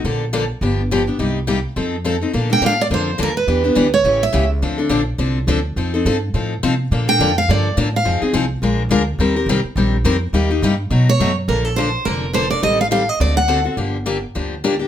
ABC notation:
X:1
M:4/4
L:1/16
Q:"Swing" 1/4=210
K:Bb
V:1 name="Steel-string acoustic guitar"
z16 | z16 | z2 g2 f2 d2 c4 B2 _c2- | _c6 _d4 =e4 z2 |
z16 | z16 | z2 g4 f2 d4 z2 f2- | f2 z12 z2 |
z16 | z8 z2 _d4 z2 | B2 A2 c4 B3- B/2 _c/2 =c2 d2 | e2 f2 f2 e2 d2 ^f4 z2 |
z16 |]
V:2 name="Steel-string acoustic guitar"
[D,F,B,DA]2 z2 [D,F,B,DA]2 z2 [D,F,=B,DG]2 z2 [D,F,B,DG]2 [B,DG]2 | [C,G,B,EG]2 z2 [C,G,B,EG]2 z2 [F,CEA]2 z2 [F,CEA]2 [CEA]2 | [D,F,B,DA]2 [B,DA]2 [D,F,B,DA]2 z2 [D,F,B,DA]2 z2 [D,F,B,DA]2 z2 | [=E,=B,DG]2 [B,DG]2 [E,B,DG]2 z2 [^C,E,A,^CG]2 z2 [C,E,A,CG]2 z2 |
[D,F,CDA]2 [CDA]2 [D,F,CDA]2 z2 [D,F,CDA]2 z2 [D,F,CDA]2 z2 | [F,CEA]2 [CEA]2 [F,CEA]2 z2 [F,CEA]2 z2 [F,CEA]2 z2 | [D,F,B,DA]2 [B,DA]2 [D,F,B,DA]2 z2 [D,F,B,DA]2 z2 [D,F,B,DA]2 z2 | [F,CE_A]2 [CEA]2 [F,CEA]2 z2 [F,_A,DFB]2 z2 [F,A,DFB]2 z2 |
[E,G,CGB]2 [CGB]2 [E,G,CGB]2 z2 [E,G,CGB]2 z2 [E,G,CGB]2 z2 | [C,G,B,EG]2 [B,EG]2 [C,G,B,EG]2 z2 [=B,,^F,A,^D^F]2 z2 [B,,F,A,DF]2 z2 | [D,F,B,DA]2 z2 [D,F,B,DA]2 z2 [D,F,B,DA]2 z2 [D,F,B,DA]2 [B,DA]2 | [E,G,CGA]2 z2 [E,G,CGA]2 z2 [D,A,C^FA]2 z2 [D,A,CFA]2 [CFA]2 |
[D,F,B,DG]2 z2 [D,F,B,DG]2 z2 [D,F,B,DG]2 z2 [D,F,B,DG]2 [B,DG]2 |]
V:3 name="Upright bass" clef=bass
B,,,8 G,,,8 | C,,8 F,,8 | B,,4 A,,4 F,,4 E,,4 | =E,,4 D,,4 A,,,4 ^C,,4 |
D,,4 B,,,4 C,,4 D,,4 | F,,4 G,,4 A,,4 C,4 | B,,4 F,,4 G,,4 A,,4 | F,,2 z2 C,,4 B,,,4 D,,4 |
E,,4 C,,2 z2 B,,,4 F,,4 | E,,4 G,,4 =B,,4 ^F,,4 | B,,,8 F,,,8 | A,,,8 D,,8 |
G,,,8 D,,8 |]